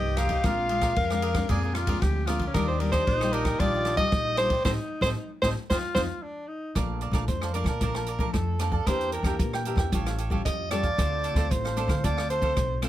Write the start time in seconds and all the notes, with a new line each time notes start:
Already playing: C2 G2 F3 A#3 D#4 G4 D#5
0.17 F3 A#3 D#4 A#4 C5 D#5 F5, cross-stick, ride
0.29 A#4 C5 D#5, kick, ride
0.44 A#1 A#2 G#3 C4 D4 F4 G#4 A#4 D5 F5, kick, cross-stick, ride
0.69 G#3 C4 D4 G#4 A#4 D5 F5, ride
0.81 G#4 A#4 D5 F5, kick, cross-stick, ride
0.96 F2 F3 A#4, kick, ride
1.10 G#3 C4 D4 A#4 D5 F5, cross-stick
1.22 G#4 A#4 D5 F5, ride
1.34 G#3 C4 D4 A#4 D5 F5, kick, cross-stick, ride
1.49 F2 A#2 G#3 C4 D4 G#4 A#4 D5 F5, kick, ride
1.63 A#4 D5 F5
1.74 F4 G#4 A#4 D5 F5, cross-stick, ride
1.87 G#3 C4 D4 G#4 A#4 D5 F5, kick, ride
2.02 D2 F3 G4, kick, cross-stick, ride
2.26 G#3 C4 D4 F4 G#4 A#4 D5 F5, cross-stick, ride
2.39 A#4 D5 F5, kick, ride
2.47 C#4
2.54 D#2 D#3 G3 D4 F4 G4 A#4 D5 D#5, kick, cross-stick, ride
2.68 C5
2.79 G3 D4 F4 G4 A#4 D5 D#5, ride
2.92 D4 G4 C5 D5 D#5, kick, cross-stick, ride
3.07 A#1 A#2 D#4, kick, ride
3.21 G3 F4 G4 D5 D#5, cross-stick
3.33 D4 G4 A#4 D5 D#5, ride
3.45 G4 D5 D#5, kick, cross-stick, ride
3.60 A#1 D#3 G3 D4 F4 G4 D5 D#5, kick, ride
3.74 G4 D5 D#5
3.85 D4 G4 D5 D#5, cross-stick, ride
3.97 G3 D4 F4 G4 D5 D#5, kick, ride
4.06 F4
4.12 A#1 A#2 D#4, kick, cross-stick, ride
4.37 G3 D4 F4 G4 C5 D5 D#5, cross-stick, ride
4.50 G4 D5 D#5, kick, ride
4.65 A1 A3 C4 D#4 A4 C5 D#5, kick, snare
5.01 A1 A3 C4 D#4 A4 C5 D#5, kick, snare
5.42 A1 A3 C4 D#4 A4 C5 D#5, kick, snare
5.70 F2 C4 D#4 F4 C5 D#5 F5, kick, snare
5.95 F2 C4 D#4 F4 C5 D#5 F5, kick, snare
6.23 D4
6.48 D#4
6.75 A#1 A#2 F3 A3 D4 A#4 D5 F5 A5, kick, cross-stick, closed hi-hat
7.01 A#4 D5 F5 A5, closed hi-hat
7.12 A#1 F3 A3 D4 A#4 D5 F5 A5, kick, cross-stick, closed hi-hat
7.28 F2 C5, kick, closed hi-hat
7.42 D5 F5 A5, cross-stick
7.53 F3 A3 D4 A#4 D5 F5 A5, closed hi-hat
7.64 A#2 A5, kick, cross-stick, closed hi-hat
7.68 D5 F5
7.81 A#1 A#2 F3 A3 D4 A#4 D5 F5 A5, kick, closed hi-hat
7.95 D5 F5 A5, cross-stick
8.06 A#4 D5 F5 A5, closed hi-hat
8.19 F3 A3 D4 A#4 D5 F5 A5, kick
8.33 F2 A4, kick, cross-stick, closed hi-hat
8.59 F3 A3 D4 A#4 D5 F5 A5, cross-stick, closed hi-hat
8.72 D5 F5 A5, kick
8.87 E2 E3 A#3 D4 G4 A#4 C5 E5 G5, kick, cross-stick, closed hi-hat
9.01 closed hi-hat
9.12 D4 A#4 E5 G5, closed hi-hat
9.23 E2 A#3 D4 G4 A#4 E5 G5, kick, cross-stick, closed hi-hat
9.39 A#2 E3, kick, closed hi-hat
9.53 A#4 E5 G5, cross-stick
9.65 A#3 D4 G4 A#4 E5 G5, closed hi-hat
9.76 E2 E5 G5, kick, cross-stick
9.80 A#4
9.92 A1 A2 G3 C#4 F4 G4 A4 C#5 F5, kick, closed hi-hat
10.06 A4 C#5 F5, cross-stick, closed hi-hat
10.18 G4 A4 C#5 F5, closed hi-hat
10.30 G3 C#4 F4 G4 A4 C#5 F5, kick
10.45 F2 A2 D#5, kick, cross-stick, closed hi-hat
10.71 G3 C#4 F4 G4 A4 C#5 D5 F5, cross-stick, closed hi-hat
10.83 A4 C#5 F5, kick, closed hi-hat
10.97 D2 D3 A3 C4 D4 F4 A4 C5 F5, kick, cross-stick, closed hi-hat
11.23 D4 A4 C5 F5, closed hi-hat
11.34 D2 A3 C4 D4 F4 A4 C5 F5, kick, cross-stick, closed hi-hat
11.51 A1 A2 C5, kick, closed hi-hat
11.64 A4 C5 F5, cross-stick
11.76 A3 C4 D4 F4 A4 C5 F5, closed hi-hat
11.88 D3 A4 C5 F5, kick, cross-stick, closed hi-hat
12.03 D2 D3 A3 C4 D4 F4 A4 C5 D5 F5, kick, closed hi-hat
12.17 A4 C5 F5, cross-stick
12.30 D4 A4 C5 F5, closed hi-hat
12.41 A3 C4 D4 F4 A4 C5 F5, kick
12.56 B1 A2, kick, cross-stick, closed hi-hat
12.82 A3 C4 D4 F4 A4 C5 F5, cross-stick, closed hi-hat